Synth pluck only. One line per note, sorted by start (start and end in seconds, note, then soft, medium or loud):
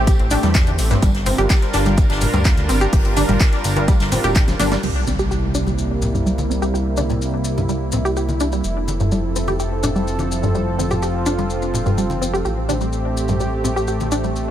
0.07 0.16 G4 medium
0.31 0.37 D4 loud
0.43 0.49 G3 medium
0.91 0.97 G2 loud
1.02 1.09 G3 medium
1.26 1.35 C4 medium
1.38 1.44 G4 medium
1.50 1.59 G4 medium
1.74 1.80 D4 loud
1.86 1.92 G3 medium
2.34 2.39 G2 loud
2.45 2.51 G3 medium
2.69 2.78 C4 medium
2.81 2.87 G4 loud
2.93 3.02 G4 medium
3.17 3.23 D4 loud
3.29 3.35 G3 medium
3.77 3.82 G2 loud
3.88 3.94 G3 medium
4.12 4.21 C4 medium
4.24 4.30 G4 loud
4.36 4.45 G4 medium
4.60 4.66 D4 loud
4.72 4.78 G3 medium
4.83 4.89 G3 medium
5.07 5.16 C4 medium
5.19 5.25 G4 medium
5.31 5.40 G4 medium
5.55 5.61 D4 medium
5.67 5.73 G3 medium
6.15 6.20 G2 loud
6.26 6.32 G3 medium
6.50 6.59 C4 medium
6.62 6.68 G4 loud
6.74 6.83 G4 medium
6.98 7.04 D4 loud
7.10 7.16 G3 medium
7.57 7.63 G2 loud
7.69 7.75 G3 medium
7.93 8.02 C4 medium
8.05 8.11 G4 medium
8.17 8.26 G4 medium
8.41 8.47 D4 loud
8.53 8.59 G3 medium
9.00 9.06 G2 loud
9.12 9.18 G3 medium
9.36 9.45 C4 medium
9.48 9.54 G4 loud
9.60 9.69 G4 medium
9.83 9.89 D4 loud
9.96 10.01 G3 medium
10.43 10.49 G2 loud
10.55 10.61 G3 medium
10.79 10.88 C4 medium
10.91 10.97 G4 medium
11.02 11.12 G4 medium
11.26 11.32 D4 loud
11.38 11.44 G3 medium
11.86 11.92 G2 loud
11.98 12.04 G3 medium
12.21 12.31 C4 medium
12.34 12.39 G4 loud
12.45 12.54 G4 medium
12.69 12.75 D4 loud
12.81 12.87 G3 medium
13.29 13.35 G2 medium
13.40 13.46 G3 medium
13.64 13.73 C4 medium
13.76 13.82 G4 loud
13.88 13.97 G4 medium
14.12 14.18 D4 loud
14.24 14.30 G3 medium